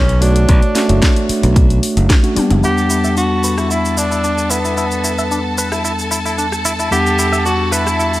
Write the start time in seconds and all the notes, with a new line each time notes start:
Already playing: B1 C#4
0.09 closed hi-hat
0.21 A3 D4 F#4 C#5, open hi-hat
0.36 closed hi-hat
0.49 B1, kick, closed hi-hat
0.62 closed hi-hat
0.75 A3 C#4 D4 F#4, snare, open hi-hat
0.88 F#1 A3 D4 F#4 C#5, closed hi-hat
1.02 kick, snare, closed hi-hat
1.16 closed hi-hat
1.29 muted fingered electric bass stroke, open hi-hat
1.43 B1, closed hi-hat
1.56 kick, closed hi-hat
1.70 closed hi-hat
1.83 open hi-hat
1.97 F#1, closed hi-hat
2.10 kick, snare, closed hi-hat
2.23 A3 C#4 D4 F#4, closed hi-hat
2.35 G3 B3 D4 G4, muted fingered electric bass stroke, open hi-hat, high tom
2.50 F#1, closed hi-hat, mid tom
2.62 E2 G3 B3 D4 E4 G4 A4 F#5 A5, shaker
2.78 shaker
2.90 E4, shaker
3.04 E5, shaker
3.17 D4 F#4, shaker
3.44 B4, shaker
3.58 E4, cross-stick, shaker
3.71 E4, shaker
3.85 shaker
3.97 D4 E4, shaker
4.11 E4, shaker
4.24 D4, shaker
4.38 shaker
4.50 B3 E4, shaker
4.65 E4, shaker
4.77 E4, shaker
4.91 shaker
5.04 E4, shaker
5.18 E5, shaker
5.31 D4, shaker
5.58 B4, shaker
5.72 E4, cross-stick, shaker
5.85 E4, shaker
5.99 shaker
6.11 E4, shaker
6.26 E4, shaker
6.38 D4, shaker
6.52 cross-stick, shaker
6.65 E4, shaker
6.79 E4, shaker
6.91 E2 G3 B3 D4 E4 G4 F#5, shaker
7.07 shaker
7.19 E4, shaker
7.32 E5, shaker
7.45 D4 F#4, shaker
7.72 E4 B4, shaker
7.86 E4, cross-stick, shaker
7.99 E4, shaker
8.14 shaker